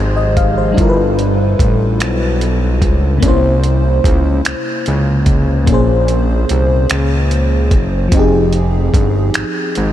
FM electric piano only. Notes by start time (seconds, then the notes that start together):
Already playing: F3 C4 D#4 G4 G#4 C5
0.16 D#5
0.37 F5
0.58 C5
0.72 G3 D4
0.76 E4 F4
0.81 A4 A#4
0.89 B4
3.18 C3 A#3
3.23 C#4 E4
3.28 C5
5.64 A#2 A#3
5.69 C#4 G#4
5.74 C5
8.08 F3 C4
8.13 D#4 G4
8.19 G#4